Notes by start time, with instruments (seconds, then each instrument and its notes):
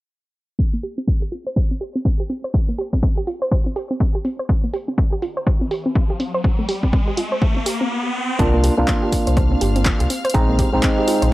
0.59 synth arpeggio sound C4, kick
0.73 synth arpeggio sound A#3
0.83 synth arpeggio sound G4, open hi-hat
0.98 synth arpeggio sound C4
1.08 synth arpeggio sound C4, kick
1.22 synth arpeggio sound G4
1.32 synth arpeggio sound F4, open hi-hat
1.47 synth arpeggio sound C5
1.56 synth arpeggio sound C5, kick
1.71 synth arpeggio sound C4
1.81 synth arpeggio sound G4, open hi-hat
1.95 synth arpeggio sound C4
2.05 synth arpeggio sound C4, kick
2.20 synth arpeggio sound G4
2.30 synth arpeggio sound C4, open hi-hat
2.44 synth arpeggio sound C5
2.54 synth arpeggio sound C4, kick
2.69 synth arpeggio sound A#3
2.78 synth arpeggio sound G4, open hi-hat
2.93 synth arpeggio sound C4, kick
3.03 synth arpeggio sound C4, kick
3.17 synth arpeggio sound G4
3.27 synth arpeggio sound F4, open hi-hat
3.42 synth arpeggio sound C5
3.52 synth arpeggio sound C5, kick
3.66 synth arpeggio sound C4
3.76 synth arpeggio sound G4, open hi-hat
3.91 synth arpeggio sound C4
4.00 synth arpeggio sound C4, kick, open hi-hat
4.15 synth arpeggio sound G4
4.25 synth arpeggio sound C4, open hi-hat
4.39 synth arpeggio sound C5
4.49 synth arpeggio sound C4, kick, riser
4.64 synth arpeggio sound A#3
4.73 synth arpeggio sound G4, open hi-hat
4.88 synth arpeggio sound C4
4.98 synth arpeggio sound C4, kick
5.12 synth arpeggio sound G4
5.22 synth arpeggio sound F4, open hi-hat
5.37 synth arpeggio sound C5
5.47 synth arpeggio sound C5, kick
5.61 synth arpeggio sound C4
5.71 synth arpeggio sound G4, open hi-hat
5.86 synth arpeggio sound C4
5.95 synth arpeggio sound C4, kick
6.10 synth arpeggio sound G4
6.20 synth arpeggio sound C4, open hi-hat
6.34 synth arpeggio sound C5
6.44 synth arpeggio sound C4, kick
6.59 synth arpeggio sound A3
6.69 synth arpeggio sound G4, open hi-hat
6.83 synth arpeggio sound C4, kick
6.93 synth arpeggio sound C4, kick
7.08 synth arpeggio sound G4
7.17 synth arpeggio sound F4, open hi-hat
7.32 synth arpeggio sound C5
7.42 synth arpeggio sound C5, kick
7.56 synth arpeggio sound C4
7.66 synth arpeggio sound G4, open hi-hat
7.81 synth arpeggio sound C4
8.39 sub bass C2, synth stab A#3 D4 F4, synth arpeggio sound C4, violin section F5 F6, kick, closed hi-hat
8.54 synth arpeggio sound A#3
8.64 synth arpeggio sound G4, open hi-hat
8.77 sub bass C2, synth stab A#3 D4 F4, synth arpeggio sound C4
8.88 synth arpeggio sound C4, kick, clap, closed hi-hat
9.03 synth arpeggio sound G4
9.12 synth arpeggio sound F4, kick, open hi-hat
9.27 sub bass C2, synth arpeggio sound C5, closed hi-hat
9.37 synth arpeggio sound C5, kick, closed hi-hat
9.51 synth arpeggio sound C4
9.61 sub bass G1, synth arpeggio sound G4, open hi-hat
9.76 synth arpeggio sound C4, closed hi-hat
9.85 synth arpeggio sound C4, kick, clap, closed hi-hat
10.00 sub bass C2, synth arpeggio sound G4, closed hi-hat
10.10 synth arpeggio sound C4, open hi-hat
10.25 synth arpeggio sound C5, closed hi-hat
10.30 closed hi-hat
10.34 sub bass A#1, synth stab G#3 C4 D#4, synth arpeggio sound C4, kick, closed hi-hat
10.49 synth arpeggio sound A#3
10.59 synth arpeggio sound G4, kick, open hi-hat
10.73 sub bass A#1, synth stab G#3 C4 D#4, synth arpeggio sound C4
10.83 synth arpeggio sound C4, kick, clap, closed hi-hat
10.98 synth arpeggio sound G4
11.07 synth arpeggio sound F4, open hi-hat
11.22 sub bass A#1, synth arpeggio sound C5, closed hi-hat